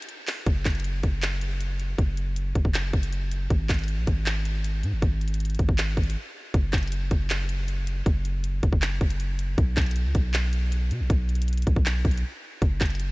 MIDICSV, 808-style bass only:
0, 0, Header, 1, 2, 480
1, 0, Start_track
1, 0, Tempo, 379747
1, 589, Time_signature, 4, 2, 24, 8
1, 16580, End_track
2, 0, Start_track
2, 0, Title_t, "808-style bass"
2, 0, Program_c, 0, 38
2, 588, Note_on_c, 0, 30, 110
2, 819, Note_off_c, 0, 30, 0
2, 828, Note_on_c, 0, 30, 108
2, 1289, Note_off_c, 0, 30, 0
2, 1308, Note_on_c, 0, 30, 100
2, 2461, Note_off_c, 0, 30, 0
2, 2509, Note_on_c, 0, 30, 113
2, 3200, Note_off_c, 0, 30, 0
2, 3229, Note_on_c, 0, 30, 103
2, 3344, Note_off_c, 0, 30, 0
2, 3350, Note_on_c, 0, 30, 102
2, 3695, Note_off_c, 0, 30, 0
2, 3709, Note_on_c, 0, 30, 101
2, 4400, Note_off_c, 0, 30, 0
2, 4430, Note_on_c, 0, 32, 115
2, 4660, Note_off_c, 0, 32, 0
2, 4670, Note_on_c, 0, 32, 102
2, 5030, Note_on_c, 0, 34, 100
2, 5049, Note_off_c, 0, 32, 0
2, 5143, Note_off_c, 0, 34, 0
2, 5149, Note_on_c, 0, 32, 102
2, 6110, Note_on_c, 0, 44, 100
2, 6129, Note_off_c, 0, 32, 0
2, 6228, Note_on_c, 0, 32, 95
2, 6247, Note_off_c, 0, 44, 0
2, 6343, Note_off_c, 0, 32, 0
2, 6349, Note_on_c, 0, 32, 114
2, 7040, Note_off_c, 0, 32, 0
2, 7069, Note_on_c, 0, 32, 101
2, 7180, Note_off_c, 0, 32, 0
2, 7188, Note_on_c, 0, 32, 105
2, 7534, Note_off_c, 0, 32, 0
2, 7548, Note_on_c, 0, 32, 101
2, 7788, Note_off_c, 0, 32, 0
2, 8269, Note_on_c, 0, 30, 111
2, 8499, Note_off_c, 0, 30, 0
2, 8509, Note_on_c, 0, 30, 105
2, 8970, Note_off_c, 0, 30, 0
2, 8989, Note_on_c, 0, 30, 107
2, 10141, Note_off_c, 0, 30, 0
2, 10190, Note_on_c, 0, 30, 115
2, 10881, Note_off_c, 0, 30, 0
2, 10910, Note_on_c, 0, 30, 106
2, 11022, Note_off_c, 0, 30, 0
2, 11029, Note_on_c, 0, 30, 104
2, 11375, Note_off_c, 0, 30, 0
2, 11389, Note_on_c, 0, 30, 100
2, 12080, Note_off_c, 0, 30, 0
2, 12108, Note_on_c, 0, 35, 113
2, 12339, Note_off_c, 0, 35, 0
2, 12348, Note_on_c, 0, 35, 107
2, 12712, Note_on_c, 0, 37, 99
2, 12731, Note_off_c, 0, 35, 0
2, 12821, Note_off_c, 0, 37, 0
2, 12829, Note_on_c, 0, 35, 107
2, 13791, Note_on_c, 0, 47, 98
2, 13810, Note_off_c, 0, 35, 0
2, 13911, Note_on_c, 0, 35, 100
2, 13930, Note_off_c, 0, 47, 0
2, 14024, Note_off_c, 0, 35, 0
2, 14030, Note_on_c, 0, 35, 111
2, 14721, Note_off_c, 0, 35, 0
2, 14750, Note_on_c, 0, 35, 107
2, 14865, Note_off_c, 0, 35, 0
2, 14870, Note_on_c, 0, 35, 103
2, 15215, Note_off_c, 0, 35, 0
2, 15229, Note_on_c, 0, 35, 106
2, 15469, Note_off_c, 0, 35, 0
2, 15950, Note_on_c, 0, 30, 115
2, 16180, Note_off_c, 0, 30, 0
2, 16190, Note_on_c, 0, 30, 105
2, 16580, Note_off_c, 0, 30, 0
2, 16580, End_track
0, 0, End_of_file